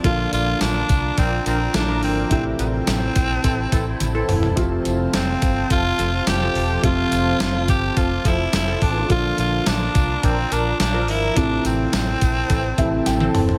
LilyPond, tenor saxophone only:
\new Staff \with { instrumentName = "Tenor saxophone" } { \time 4/4 \key f \major \tempo 4 = 106 f'8 f'8 d'4 c'8 c'8 d'8 c'8 | c'8 c'2. r8 | r4 c'4 f'4 g'4 | f'4. g'8 f'8 e'8 e'8 d'8 |
f'8 f'8 d'4 c'8 d'8 d'8 e'8 | d'8 c'2. r8 | }